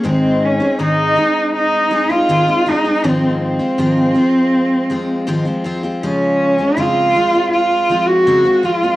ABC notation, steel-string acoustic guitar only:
X:1
M:4/4
L:1/16
Q:1/4=80
K:Ab
V:1 name="Steel-string acoustic guitar"
[A,,E,A,CEA]3 [A,CEA] [A,,E,A,CEA]2 [A,CEA]4 [A,CEA] [A,CEA] [A,,E,A,CEA] [A,CEA] [A,CEA] [A,CEA] | [A,,E,F,A,CF]3 [F,A,CF] [A,,E,F,A,CF]2 [F,A,CF]4 [F,A,CF]2 [A,,E,F,A,CF] [F,A,CF] [F,A,CF] [F,A,CF] | [D,F,A,F]3 [A,CF] [D,F,A,CF]2 [F,A,CF] [A,CF]3 [F,A,CF]2 [D,F,A,CF] [A,CF] [F,A,CF] [A,CF] |]